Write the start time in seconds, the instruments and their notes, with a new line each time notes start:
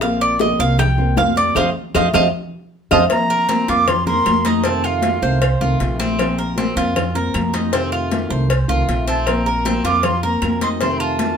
Already playing: upright bass A#1
0.01 nylon-string guitar F3 A#3 C4 F4, cuban tres F5, high bongo, high conga, claves
0.20 cuban tres D5, high bongo, high conga
0.39 nylon-string guitar F3 A#3 C4 F4, cuban tres D#5, high bongo, high conga
0.59 upright bass C2, nylon-string guitar A#3 C4 F4, cuban tres F5, high bongo, high conga
0.78 cuban tres G5, high bongo, high conga, low conga, claves
0.97 nylon-string guitar A#3 C4 F4, high bongo, high conga
1.17 upright bass F2, nylon-string guitar F3 A#3 C4 F4, cuban tres F5, high bongo, low bongo, high conga, claves
1.36 cuban tres D5, high conga
1.55 upright bass F2, nylon-string guitar F3 A3 C4, cuban tres C5 D#5 F5, high bongo, low conga, claves
1.94 upright bass F2, nylon-string guitar F3 A3 C4, cuban tres C5 D#5 F5, high bongo, low conga, claves
2.14 upright bass F2, nylon-string guitar F3 A3 C4, cuban tres C5 D#5 F5, high bongo, low conga, claves
2.91 upright bass F2, nylon-string guitar F3 A3 C4, cuban tres C5 D#5 F5, flute A5, high bongo, low conga, claves
3.10 nylon-string guitar F3 A#3 C4 F4, flute A#5, cowbell, high conga, claves
3.30 cuban tres A#4, high conga
3.49 nylon-string guitar F3 A#3 C4 F4, cuban tres C4, cowbell, high conga
3.68 upright bass F2, nylon-string guitar A#3 C4 F4, cuban tres F4, flute D6, cowbell, high conga
3.87 flute C6, muted nylon-string guitar stroke, cowbell, high conga, low conga, claves
4.06 nylon-string guitar A#3 C4 F4, cuban tres A#4, flute C6, high conga, low conga
4.25 upright bass F2, nylon-string guitar F3 A#3 C4 F4, cowbell, high conga, claves
4.45 cuban tres D#4, flute A#5, cowbell, high conga
4.64 nylon-string guitar C3 D#3 A3 C4 F4, cuban tres C4, flute A5, cowbell
4.84 cuban tres F4, flute F5, high conga, claves
5.02 nylon-string guitar D#3 A3 C4 F4, cowbell, high conga
5.22 upright bass C2, nylon-string guitar D#3 A3 C4 F4, cuban tres C5, high conga
5.41 muted nylon-string guitar stroke, cowbell, high conga, claves
5.60 upright bass C2, nylon-string guitar D#3 A3 C4 F4, cuban tres F4, high conga
5.80 upright bass A#1, nylon-string guitar D#3 A3 C4 F4, cowbell, high conga
6.00 cuban tres C4, cowbell, high conga
6.19 nylon-string guitar F3 A#3 C4 F4, cowbell, high conga, claves
6.38 cuban tres A#4
6.57 nylon-string guitar F3 A#3 C4 F4, cuban tres C4, cowbell, high conga
6.76 upright bass F2, nylon-string guitar A#3 C4 F4, cuban tres F4, cowbell, high conga
6.96 muted nylon-string guitar stroke, cowbell, high conga, low conga, claves
7.15 nylon-string guitar A#3 C4 F4, cuban tres A#4, high conga
7.34 upright bass F2, nylon-string guitar F3 A#3 C4 F4, cowbell, high conga, claves
7.54 cuban tres D#4, cowbell, high conga
7.73 nylon-string guitar C3 D#3 A3 C4 F4, cuban tres C4, cowbell
7.92 cuban tres F4, high conga, claves
8.11 nylon-string guitar D#3 A3 C4 F4, cowbell, high conga
8.30 upright bass C2, nylon-string guitar D#3 A3 C4 F4, cuban tres C5, high conga
8.50 muted nylon-string guitar stroke, cowbell, high conga, claves
8.68 upright bass C2, nylon-string guitar D#3 A3 C4 F4, cuban tres F4, high conga
8.88 upright bass A#1, nylon-string guitar D#3 A3 C4 F4, cowbell, high conga
9.07 cuban tres C4, flute A5, cowbell
9.26 nylon-string guitar F3 A#3 C4 F4, flute A#5, cowbell, high conga, claves
9.46 cuban tres A#4, high conga
9.65 nylon-string guitar F3 A#3 C4 F4, cuban tres C4, cowbell, high conga
9.84 upright bass F2, nylon-string guitar A#3 C4 F4, cuban tres F4, flute D6, cowbell, high conga
10.03 flute C6, muted nylon-string guitar stroke, cowbell, high conga, low conga, claves
10.23 nylon-string guitar A#3 C4 F4, cuban tres A#4, flute A#5, high conga
10.42 upright bass F2, nylon-string guitar F3 A#3 C4 F4, cowbell, high conga, claves
10.61 cuban tres D#4, flute C6, cowbell, high conga
10.81 nylon-string guitar C3 D#3 A3 C4 F4, cuban tres C4, flute C6, cowbell, high conga
11.00 cuban tres F4, flute A5, high conga, claves
11.19 nylon-string guitar D#3 A3 C4 F4, cowbell, high conga